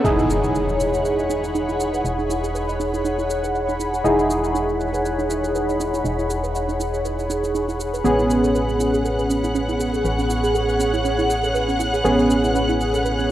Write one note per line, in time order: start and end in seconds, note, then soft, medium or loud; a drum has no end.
0.00 8.03 G#4 medium
0.00 8.05 C#5 medium
0.00 8.05 F#5 medium
0.00 13.31 B5 medium
0.04 2.02 E1 medium
0.04 4.02 D#4 medium
0.04 0.13 D#4 loud
0.04 4.02 E4 medium
0.04 4.02 G#4 medium
0.04 impact medium
0.04 cabasa soft
0.19 0.26 E4 medium
0.19 cabasa soft
0.30 0.38 G#4 medium
0.30 cabasa medium
0.43 0.51 B4 medium
0.43 cabasa soft
0.55 0.63 D#5 medium
0.55 cabasa soft
0.68 0.76 D#4 medium
0.68 cabasa soft
0.80 0.88 E4 medium
0.80 cabasa medium
0.93 1.01 G#4 medium
0.93 cabasa soft
1.05 1.13 B4 medium
1.05 cabasa soft
1.18 1.29 D#5 medium
1.18 cabasa soft
1.30 1.38 D#4 loud
1.30 cabasa medium
1.43 1.48 E4 medium
1.43 cabasa soft
1.55 1.64 D#4 loud
1.55 cabasa soft
1.68 1.76 E4 medium
1.68 cabasa soft
1.80 1.88 G#4 medium
1.80 cabasa medium
1.93 2.01 B4 medium
1.93 cabasa soft
2.05 4.02 E1 medium
2.05 2.13 D#5 medium
2.05 cabasa soft
2.19 2.26 D#4 medium
2.19 cabasa soft
2.30 2.38 E4 medium
2.30 cabasa medium
2.43 2.51 G#4 medium
2.43 cabasa soft
2.55 2.63 B4 medium
2.55 cabasa soft
2.69 2.79 D#5 medium
2.69 cabasa soft
2.79 2.88 D#4 loud
2.79 cabasa medium
2.94 2.98 E4 medium
2.94 cabasa soft
3.05 3.13 D#4 loud
3.05 cabasa soft
3.18 3.26 E4 medium
3.18 cabasa soft
3.30 3.38 G#4 medium
3.30 cabasa medium
3.43 3.51 B4 medium
3.43 cabasa soft
3.55 3.63 D#5 medium
3.55 cabasa soft
3.68 3.76 D#4 medium
3.68 cabasa soft
3.80 3.88 E4 medium
3.80 cabasa medium
3.93 4.01 G#4 medium
3.93 cabasa soft
4.04 6.02 E1 medium
4.04 8.02 D#4 medium
4.04 8.02 E4 medium
4.04 8.02 G#4 medium
4.04 4.14 B4 medium
4.04 cabasa soft
4.19 4.29 D#5 medium
4.19 cabasa soft
4.30 4.39 D#4 loud
4.30 cabasa medium
4.44 4.48 E4 medium
4.44 cabasa soft
4.55 4.63 D#4 loud
4.55 cabasa soft
4.69 4.76 E4 medium
4.69 cabasa soft
4.80 4.89 G#4 medium
4.80 cabasa medium
4.94 5.01 B4 medium
4.94 cabasa soft
5.05 5.13 D#5 medium
5.05 cabasa soft
5.18 5.26 D#4 medium
5.18 cabasa soft
5.30 5.38 E4 medium
5.30 cabasa medium
5.43 5.51 G#4 medium
5.43 cabasa soft
5.55 5.63 B4 medium
5.55 cabasa soft
5.68 5.79 D#5 medium
5.68 cabasa soft
5.80 5.89 D#4 loud
5.80 cabasa medium
5.94 5.98 E4 medium
5.94 cabasa soft
6.05 8.02 E1 medium
6.05 6.14 D#4 loud
6.05 cabasa soft
6.19 6.26 E4 medium
6.19 cabasa soft
6.30 6.38 G#4 medium
6.30 cabasa medium
6.43 6.51 B4 medium
6.43 cabasa soft
6.55 6.64 D#5 medium
6.55 cabasa soft
6.68 6.76 D#4 medium
6.68 cabasa soft
6.80 6.88 E4 medium
6.80 cabasa medium
6.93 7.01 G#4 medium
6.93 cabasa soft
7.05 7.13 B4 medium
7.05 cabasa soft
7.18 7.29 D#5 medium
7.18 cabasa soft
7.30 7.38 D#4 loud
7.30 cabasa medium
7.43 7.48 E4 medium
7.43 cabasa soft
7.55 7.63 D#4 loud
7.55 cabasa soft
7.69 7.76 E4 medium
7.69 cabasa soft
7.80 7.88 G#4 medium
7.80 cabasa medium
7.93 8.01 B4 medium
7.93 cabasa soft
8.04 10.02 A1 medium
8.04 12.02 B3 medium
8.04 8.13 C#4 loud
8.04 12.02 C#4 medium
8.04 13.31 G#4 medium
8.04 12.02 G#4 medium
8.04 13.31 F#5 medium
8.04 13.31 F#6 medium
8.04 cabasa soft
8.19 8.26 E4 medium
8.19 cabasa soft
8.30 8.38 G#4 medium
8.30 cabasa medium
8.41 8.51 A4 medium
8.41 13.31 F#5 medium
8.41 cabasa soft
8.49 13.31 C#5 medium
8.55 8.63 B4 medium
8.55 cabasa soft
8.68 8.76 C#4 medium
8.68 cabasa soft
8.80 8.88 E4 medium
8.80 cabasa medium
8.93 9.01 G#4 medium
8.93 cabasa soft
9.05 9.13 A4 medium
9.05 cabasa soft
9.19 9.29 B4 medium
9.19 cabasa soft
9.30 9.38 C#4 loud
9.30 cabasa medium
9.44 9.48 E4 medium
9.44 cabasa soft
9.55 9.64 C#4 loud
9.55 cabasa soft
9.69 9.76 E4 medium
9.69 cabasa soft
9.80 9.88 G#4 medium
9.80 cabasa medium
9.94 10.01 A4 medium
9.94 cabasa soft
10.05 12.02 A1 medium
10.05 10.14 B4 medium
10.05 cabasa soft
10.19 10.26 C#4 medium
10.19 cabasa soft
10.30 10.39 E4 medium
10.30 cabasa medium
10.44 10.51 G#4 medium
10.44 cabasa soft
10.55 10.64 A4 medium
10.55 cabasa soft
10.69 10.79 B4 medium
10.69 cabasa soft
10.80 10.88 C#4 loud
10.80 cabasa medium
10.94 10.98 E4 medium
10.94 cabasa soft
11.05 11.13 C#4 loud
11.05 cabasa soft
11.18 11.26 E4 medium
11.18 cabasa soft
11.30 11.38 G#4 medium
11.30 cabasa medium
11.44 11.51 A4 medium
11.44 cabasa soft
11.55 11.63 B4 medium
11.55 cabasa soft
11.68 11.76 C#4 medium
11.68 cabasa soft
11.80 11.88 E4 medium
11.80 cabasa medium
11.93 12.01 G#4 medium
11.93 cabasa soft
12.04 13.31 A1 medium
12.04 13.31 B3 medium
12.04 13.31 C#4 medium
12.04 13.31 G#4 medium
12.04 12.13 A4 medium
12.04 cabasa soft
12.18 12.29 B4 medium
12.18 cabasa soft
12.29 12.38 C#4 loud
12.29 cabasa medium
12.43 12.48 E4 medium
12.43 cabasa soft
12.55 12.63 C#4 loud
12.55 cabasa soft
12.68 12.76 E4 medium
12.68 cabasa soft
12.80 12.88 G#4 medium
12.80 cabasa medium
12.94 13.01 A4 medium
12.94 cabasa soft
13.05 13.13 B4 medium
13.05 cabasa soft
13.19 13.26 C#4 medium
13.19 cabasa soft